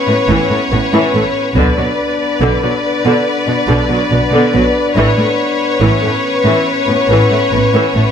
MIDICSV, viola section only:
0, 0, Header, 1, 2, 480
1, 0, Start_track
1, 0, Tempo, 849858
1, 887, Time_signature, 4, 2, 24, 8
1, 4584, End_track
2, 0, Start_track
2, 0, Title_t, "Viola section"
2, 0, Program_c, 0, 48
2, 51, Note_on_c, 0, 59, 48
2, 96, Note_off_c, 0, 59, 0
2, 168, Note_on_c, 0, 52, 52
2, 280, Note_off_c, 0, 52, 0
2, 286, Note_on_c, 0, 57, 42
2, 331, Note_off_c, 0, 57, 0
2, 407, Note_on_c, 0, 59, 47
2, 452, Note_off_c, 0, 59, 0
2, 526, Note_on_c, 0, 52, 55
2, 638, Note_off_c, 0, 52, 0
2, 644, Note_on_c, 0, 57, 51
2, 689, Note_off_c, 0, 57, 0
2, 882, Note_on_c, 0, 50, 65
2, 996, Note_off_c, 0, 50, 0
2, 999, Note_on_c, 0, 54, 34
2, 1044, Note_off_c, 0, 54, 0
2, 1362, Note_on_c, 0, 50, 64
2, 1476, Note_off_c, 0, 50, 0
2, 1488, Note_on_c, 0, 54, 37
2, 1533, Note_off_c, 0, 54, 0
2, 1723, Note_on_c, 0, 50, 52
2, 1836, Note_off_c, 0, 50, 0
2, 1963, Note_on_c, 0, 59, 45
2, 2008, Note_off_c, 0, 59, 0
2, 2078, Note_on_c, 0, 50, 53
2, 2194, Note_off_c, 0, 50, 0
2, 2211, Note_on_c, 0, 54, 43
2, 2256, Note_off_c, 0, 54, 0
2, 2331, Note_on_c, 0, 59, 45
2, 2376, Note_off_c, 0, 59, 0
2, 2446, Note_on_c, 0, 50, 56
2, 2558, Note_off_c, 0, 50, 0
2, 2570, Note_on_c, 0, 54, 43
2, 2615, Note_off_c, 0, 54, 0
2, 2803, Note_on_c, 0, 52, 59
2, 2916, Note_off_c, 0, 52, 0
2, 2925, Note_on_c, 0, 57, 37
2, 2970, Note_off_c, 0, 57, 0
2, 3282, Note_on_c, 0, 52, 52
2, 3396, Note_off_c, 0, 52, 0
2, 3402, Note_on_c, 0, 57, 39
2, 3447, Note_off_c, 0, 57, 0
2, 3647, Note_on_c, 0, 52, 46
2, 3759, Note_off_c, 0, 52, 0
2, 3894, Note_on_c, 0, 59, 40
2, 3939, Note_off_c, 0, 59, 0
2, 4015, Note_on_c, 0, 52, 54
2, 4125, Note_off_c, 0, 52, 0
2, 4133, Note_on_c, 0, 57, 41
2, 4179, Note_off_c, 0, 57, 0
2, 4256, Note_on_c, 0, 59, 40
2, 4301, Note_off_c, 0, 59, 0
2, 4379, Note_on_c, 0, 52, 52
2, 4487, Note_off_c, 0, 52, 0
2, 4498, Note_on_c, 0, 57, 41
2, 4543, Note_off_c, 0, 57, 0
2, 4584, End_track
0, 0, End_of_file